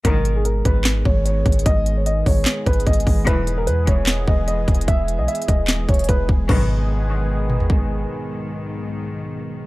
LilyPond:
<<
  \new Staff \with { instrumentName = "Grand piano" } { \time 4/4 \key gis \minor \tempo 4 = 149 ais'8. gis'16 ais'8 b'4 cis''8 cis''4 | dis''8. cis''16 dis''8 cis''4 b'8 dis''4 | b'8. ais'16 b'8 cis''4 dis''8 dis''4 | e''8. dis''16 e''8 dis''4 cis''8 b'8 r8 |
b'2. r4 | r1 | }
  \new Staff \with { instrumentName = "Analog synth pad" } { \clef bass \time 4/4 \key gis \minor << { <gis b gis'>1~ | <gis b gis'>1~ | <gis b gis'>1~ | <gis b gis'>1 |
<dis gis b gis'>1~ | <dis gis b gis'>1 | } \\ { dis1~ | dis1 | e1~ | e1 |
r1 | r1 | } >> }
  \new Staff \with { instrumentName = "String section" } { \clef bass \time 4/4 \key gis \minor <b,, gis, dis>8. r2. r16 | r1 | <b,, gis, e>8. r2. r16 | r1 |
<b,, gis, dis>1~ | <b,, gis, dis>1 | }
  \new Staff \with { instrumentName = "808-style bass" } { \clef bass \time 4/4 \key gis \minor gis,,4. gis,,4 gis,,4 gis,,8 | gis,,4. gis,,8 r8 gis,,8 gis,,8 gis,,8 | e,,4 e,8 e,,4 e,,4 e,,8 | e,,8. b,,16 r8 dis,,4 e,,8 e,,8 e,,8 |
gis,,1 | r1 | }
  \new DrumStaff \with { instrumentName = "Drums" } \drummode { \time 4/4 <hh bd>8 hh8 hh8 <hh bd>8 <hc hh sn>8 bd8 \tuplet 3/2 { hh16 r16 r16 <hh bd>16 hh16 hh16 } | <hh bd>8 hh8 hh8 <hho bd>8 \tuplet 3/2 { <hc hh sn>16 r16 r16 <hh bd>16 hh16 hh16 <hh bd>16 hh16 hh16 <hho bd>16 r16 r16 } | <hh bd>8 hh8 hh8 <hh bd>8 <hc hh sn>8 bd8 \tuplet 3/2 { hh16 r16 r16 <hh bd>16 hh16 hh16 } | <hh bd>8 hh8 \tuplet 3/2 { hh16 hh16 hh16 <hh bd>16 r16 r16 } <hc hh sn>8 <hh bd>32 hh32 hh32 hh32 <hh bd>8 bd8 |
<cymc bd>4 r4 r8 toml16 tomfh16 bd4 | r4 r4 r4 r4 | }
>>